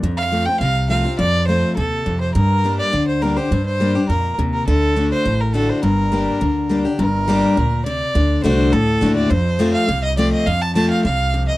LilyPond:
<<
  \new Staff \with { instrumentName = "Fiddle" } { \time 4/4 \key g \minor \tempo 4 = 207 r8 f''4 g''8 f''4 f''4 | d''4 c''4 a'4. c''8 | bes'4. d''4 c''8 bes'8 c''8~ | c''8 c''4. bes'4 r8 bes'8 |
a'4. c''4 bes'8 a'8 c''8 | bes'2.~ bes'8 r8 | bes'2. d''4~ | d''4 c''4 a'4. d''8 |
c''4. f''4 ees''8 d''8 ees''8 | f''8 a''8 a''8 f''8 f''4. ees''8 | }
  \new Staff \with { instrumentName = "Steel-string acoustic guitar" } { \time 4/4 \key g \minor << { r4 <f a c' f'>8 <c' f'>8 r4 <f a c' f'>8 <c' f'>8 | r4 <f a c' f'>4 r2 | r4 <g bes d' g'>4 r4 <g bes d' g'>8 <d' g'>8 | r4 <g bes d' g'>8 <d' g'>8 r2 |
r4 <d a d' fis'>4 r4 <d a d' fis'>4 | r4 <g bes d' g'>4 r4 <g bes d' g'>8 <d' g'>8 | r4 <g bes d' g'>4 r2 | r4 <d a d' fis'>4 r4 <d a d' fis'>4 |
r4 <f a c' f'>4 r4 <f a c' f'>4 | r4 <f a c' f'>4 r2 | } \\ { f,2 c2 | f,2 c4 f,4 | g,2 d2 | g,2 bes,4 c4 |
d2 a,2 | g,2 d2 | g,2 bes,4 c4 | d2 a,2 |
f,2 c2 | f,2 c4 f,4 | } >> }
  \new Staff \with { instrumentName = "Upright bass" } { \clef bass \time 4/4 \key g \minor f,2 c,2 | f,2 ees,4 f,4 | g,2 d,2 | g,2 f,4 ees,4 |
d,2 a,,2 | g,,2 d,2 | g,,2 d,2 | d,4 c,4 d,4 ees,4 |
f,2 c,2 | f,2 c,2 | }
>>